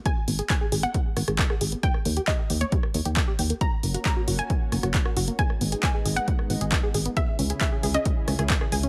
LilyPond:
<<
  \new Staff \with { instrumentName = "Synth pluck" } { \time 4/4 \key gis \minor \tempo 4 = 135 gis''8. r16 gis''8 r16 fis''2 r16 | g''8. r16 dis''8 r16 cis''2 r16 | ais''8. r16 ais''8 r16 gis''2 r16 | gis''8. r16 gis''8 r16 fis''2 r16 |
e''8. r16 e''8 r16 dis''2 r16 | }
  \new Staff \with { instrumentName = "Synth arpeggio sound" } { \time 4/4 \key gis \minor gis16 r16 b16 gis'16 r16 gis'16 gis'16 b16 gis16 r16 b16 gis'16 r16 gis'16 gis'16 b16 | g16 r16 ais16 g'16 r16 g'16 g'16 ais16 g16 r16 ais16 g'16 r16 g'16 g'16 ais16 | fis16 r16 ais16 fis'16 r16 fis'16 fis'16 ais16 fis16 r16 ais16 fis'16 r16 fis'16 fis'16 ais16 | gis16 r16 b16 gis'16 r16 gis'16 gis'16 b16 gis16 r16 b16 gis'16 r16 gis'16 gis'16 b16 |
gis16 r16 cis'16 gis'16 r16 gis'16 gis'16 cis'16 gis16 r16 cis'16 gis'16 r16 gis'16 gis'16 cis'16 | }
  \new Staff \with { instrumentName = "Analog synth pad" } { \time 4/4 \key gis \minor r1 | r1 | <ais cis' fis'>1 | <gis b dis'>1 |
<cis cis' e' gis'>1 | }
  \new Staff \with { instrumentName = "FM bass" } { \clef bass \time 4/4 \key gis \minor r8 gis,,16 r8. gis,,16 r8. gis,,16 gis,,16 r8 gis,,16 r16 | r8 dis,16 r8. dis,16 r8. dis,16 dis,16 r8 dis,16 r16 | r8 fis,,16 r8. fis,,16 r8. fis,,16 fis,,16 r8 fis,,16 r16 | r8 gis,,16 r8. gis,,16 r8. gis,,16 gis,,16 r8 gis,,16 r16 |
r8 cis,16 r8. cis,16 r8. cis,16 cis,16 r8 cis,16 r16 | }
  \new DrumStaff \with { instrumentName = "Drums" } \drummode { \time 4/4 <hh bd>8 hho16 hh16 <hc hh bd>8 hho16 hh16 <hh bd>8 <hho ss>16 <hh ss>16 <hc hh bd>16 ss16 hho16 hh16 | <hh bd>16 ss16 hho16 hh16 <hc hh bd>8 hho16 hh16 <hh bd>16 ss16 hho16 hh16 <hc hh bd>8 hho16 hh16 | <hh bd>8 hho16 hh16 <hc hh bd>8 hho16 hh16 <hh bd>8 <hho ss>16 <hh ss>16 <hc hh bd>16 ss16 hho16 hh16 | <hh bd>16 ss16 hho16 hh16 <hc hh bd>8 hho16 hh16 <hh bd>16 ss16 hho16 hh16 <hc hh bd>8 hho16 hh16 |
<hh bd>8 hho16 hh16 <hc hh bd>8 hho16 hh16 <hh bd>8 <hho ss>16 <hh ss>16 <hc hh bd>16 ss16 hho16 hh16 | }
>>